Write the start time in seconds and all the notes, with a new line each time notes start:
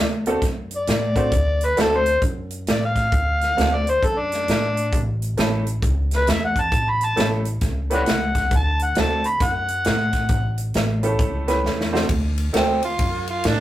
Already playing: D2 D5
0.26 A3 C4 D4 F#4 A4, closed hi-hat
0.42 F#2, kick, snare, closed hi-hat
0.71 closed hi-hat
0.76 D5
0.87 A2, snare, closed hi-hat
1.16 A3 C4 D4 F#4 C5, kick, closed hi-hat
1.32 D2, kick, closed hi-hat
1.61 closed hi-hat
1.66 B4
1.77 D2 A3 C4 D4 F#4 A4, snare, closed hi-hat
1.82 A4
1.97 C5
2.06 closed hi-hat
2.22 F#2, kick, closed hi-hat
2.50 closed hi-hat
2.67 A2 D5, snare, closed hi-hat
2.85 F5
2.96 kick, snare, closed hi-hat
3.12 D2, kick, closed hi-hat
3.41 snare, closed hi-hat
3.57 D2 A3 C4 D4 F#4 A4, snare, closed hi-hat
3.74 D5
3.87 C5, closed hi-hat
4.02 F#2 A4, kick, closed hi-hat
4.19 D4
4.32 snare, closed hi-hat
4.48 A2, snare, closed hi-hat
4.77 closed hi-hat
4.93 A1, kick, closed hi-hat
5.22 closed hi-hat
5.37 A1 A3 C#4 E4 G4 A4, snare, closed hi-hat
5.66 closed hi-hat
5.82 C#2, kick, closed hi-hat
6.11 snare, closed hi-hat
6.16 B4
6.27 E2 E5, snare, closed hi-hat
6.45 F#5
6.56 kick, closed hi-hat
6.60 A5
6.72 A1, kick, closed hi-hat
6.90 B5
7.01 A5, closed hi-hat
7.16 A1 A3 C#4 E4 G4 A4, snare, closed hi-hat
7.45 closed hi-hat
7.61 C#2, kick, snare, closed hi-hat
7.90 A3 C#4 E4 G4 B4, closed hi-hat
7.94 B4 D5 F#5
8.06 C#2, snare, closed hi-hat
8.35 kick, snare, closed hi-hat
8.51 D2, kick, closed hi-hat
8.56 A5
8.79 F#5, closed hi-hat
8.95 D2 A3 C4 D4 F#4 A4, snare, closed hi-hat
9.00 A5
9.24 B5, closed hi-hat
9.40 F#2, kick, snare, closed hi-hat
9.44 F#5
9.68 closed hi-hat
9.84 A2, snare, closed hi-hat
10.13 kick, snare, closed hi-hat
10.29 A1, kick, closed hi-hat
10.58 closed hi-hat
10.74 A1, snare, closed hi-hat
11.03 A3 C#4 E4 G4 A4, closed hi-hat
11.19 C#2, kick, closed hi-hat
11.48 A3 C#4 E4 G4 B4, snare, closed hi-hat
11.64 E2, snare
11.81 snare
11.93 A3 C4 D4 F#4 C5, snare
12.09 D2, kick, ride
12.38 ride
12.53 A3 C4 D4 F#4 A4, snare, ride
12.83 F4, ride
12.99 F#2, kick, ride
13.27 F4, ride
13.44 A2 D4, snare, ride